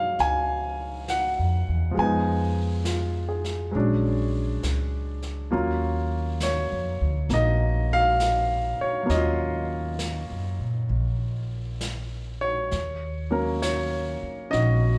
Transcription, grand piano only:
0.00 1.90 F3 soft
0.00 1.93 G#3 soft
0.00 1.97 A#3 soft
0.00 1.98 C#4 soft
0.00 1.99 C#5 medium
0.00 1.99 F5 medium
0.20 1.05 G#5 medium
1.10 1.94 F#5 medium
1.91 3.72 F3 soft
1.91 3.71 G#3 soft
1.99 3.76 B3 soft
1.99 3.77 D#4 medium
1.99 4.61 G#5 medium
2.84 3.55 F4 soft
3.29 3.92 G#4 soft
3.71 5.49 F#3 medium
3.71 5.51 G#3 soft
3.71 5.50 C#4 soft
3.76 5.54 D4 medium
5.51 9.02 F#3 medium
5.51 7.28 A#3 soft
5.51 9.08 C#4 soft
5.51 9.09 F4 medium
6.43 7.34 C#5 medium
7.30 9.04 A#3 soft
7.30 9.11 D#4 soft
7.30 7.87 D#5 medium
7.93 8.77 F5 loud
8.81 9.09 C#5 medium
9.03 12.69 F#3 soft
9.03 12.70 A#3 soft
9.10 12.72 C#4 soft
9.10 11.77 D#5 medium
9.14 12.74 F4 medium
12.41 13.28 C#5 medium
13.30 14.98 F#3 soft
13.30 14.98 A#3 soft
13.30 14.49 C#4 soft
13.30 13.64 A#4 medium
13.62 14.48 C#5 medium
14.50 14.98 C#4 soft
14.50 14.98 D#4 soft
14.50 14.98 F#4 soft
14.50 14.98 D#5 medium

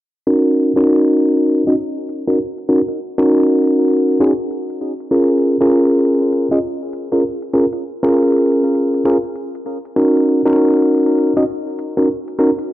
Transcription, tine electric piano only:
0.27 0.72 C#4 medium
0.27 0.72 D#4 medium
0.27 0.72 F#4 medium
0.27 0.72 A#4 medium
0.76 1.62 C#4 medium
0.76 1.62 D#4 medium
0.76 1.62 F#4 medium
0.76 1.62 A#4 medium
1.67 1.73 C#4 medium
1.67 1.73 D#4 medium
1.67 1.73 F#4 medium
1.67 1.73 D#5 medium
2.27 2.38 C#4 medium
2.27 2.38 D#4 medium
2.27 2.38 F#4 medium
2.27 2.38 A#4 medium
2.69 2.80 C#4 medium
2.69 2.80 D#4 medium
2.69 2.80 F#4 medium
2.69 2.80 A#4 medium
3.18 4.18 C#4 medium
3.18 4.18 D#4 medium
3.18 4.18 F#4 medium
3.18 4.18 A#4 loud
4.20 4.31 C#4 medium
4.20 4.31 D#4 medium
4.20 4.31 F#4 medium
4.20 4.31 G#4 medium
5.11 5.56 C#4 medium
5.11 5.56 F4 medium
5.11 5.56 G#4 medium
5.11 5.56 A#4 medium
5.61 6.47 C#4 medium
5.61 6.47 F4 medium
5.61 6.47 G#4 medium
5.61 6.47 A#4 loud
6.51 6.58 C#4 medium
6.51 6.58 F4 medium
6.51 6.58 G#4 medium
6.51 6.58 D#5 medium
7.12 7.22 C#4 medium
7.12 7.23 F4 medium
7.12 7.22 G#4 medium
7.12 7.22 A#4 medium
7.54 7.65 C#4 medium
7.54 7.65 F4 medium
7.54 7.65 G#4 medium
7.54 7.65 A#4 medium
8.03 9.03 C#4 medium
8.03 9.03 F4 medium
8.03 9.03 G#4 medium
8.03 9.03 A#4 loud
9.05 9.16 C#4 medium
9.05 9.16 F4 medium
9.05 9.16 G#4 medium
9.05 9.16 A#4 loud
9.96 10.41 C#4 medium
9.96 10.41 D#4 medium
9.96 10.41 F#4 medium
9.96 10.41 A#4 medium
10.46 11.32 C#4 medium
10.46 11.32 D#4 medium
10.46 11.32 F#4 medium
10.46 11.32 A#4 loud
11.37 11.43 C#4 medium
11.37 11.43 D#4 medium
11.37 11.43 F#4 medium
11.37 11.43 D#5 medium
11.97 12.07 C#4 medium
11.97 12.07 D#4 medium
11.97 12.07 F#4 medium
11.97 12.07 A#4 medium
12.39 12.50 C#4 medium
12.39 12.50 D#4 medium
12.39 12.50 F#4 medium
12.39 12.50 A#4 medium

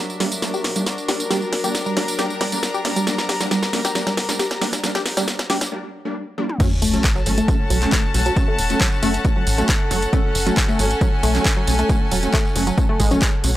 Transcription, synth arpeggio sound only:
0.20 0.31 G3 medium
0.54 0.61 G4 medium
0.76 0.86 G3 medium
1.08 1.16 G4 medium
1.31 1.41 G3 medium
1.64 1.71 G4 medium
1.86 1.96 G3 medium
2.19 2.26 G4 medium
2.41 2.52 G3 medium
2.74 2.81 G4 medium
2.96 3.06 G3 medium
3.29 3.37 G4 medium
3.51 3.62 G3 medium
3.85 3.92 G4 medium
4.07 4.17 G3 medium
4.39 4.47 G4 medium
4.61 4.72 G3 medium
4.95 5.02 G4 medium
5.17 5.27 G3 medium
5.50 5.57 G4 medium
6.60 6.67 F#3 medium
6.82 6.93 A3 medium
7.16 7.22 F#3 medium
7.38 7.48 A3 medium
7.70 7.78 F#3 medium
7.92 8.03 A3 medium
8.26 8.33 F#3 medium
8.48 8.58 A3 medium
8.81 8.88 F#3 medium
9.03 9.14 A3 medium
9.36 9.43 F#3 medium
9.58 9.68 A3 medium
9.91 9.98 F#3 medium
10.13 10.24 A3 medium
10.46 10.53 F#3 medium
10.69 10.79 A3 medium
11.01 11.09 F#3 medium
11.23 11.34 A3 medium
11.57 11.64 F#3 medium
11.79 11.89 A3 medium
12.11 12.19 F#3 medium
12.34 12.44 A3 medium
12.67 12.74 F#3 medium
12.89 12.99 A3 medium
13.00 13.11 G#3 medium
13.11 13.21 C#4 loud
13.22 13.29 G#3 medium

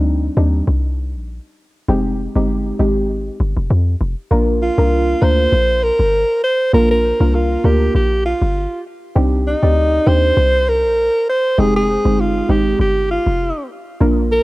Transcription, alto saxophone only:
4.62 5.24 F4 loud
5.23 5.85 C5 loud
5.83 6.43 A#4 loud
6.44 6.72 C5 loud
6.74 6.89 A#4 loud
6.91 7.36 A#4 loud
7.35 7.67 F4 medium
7.65 7.95 G4 medium
7.96 8.23 G4 medium
8.26 8.82 F4 medium
9.47 10.09 D#4 loud
10.08 10.70 C5 loud
10.69 11.29 A#4 loud
11.29 11.61 C5 loud
11.60 11.76 G#4 loud
11.76 12.22 G#4 loud
12.20 12.52 F4 medium
12.51 12.80 G4 medium
12.81 13.08 G4 medium
13.11 13.67 F4 medium
14.32 14.43 A#4 loud

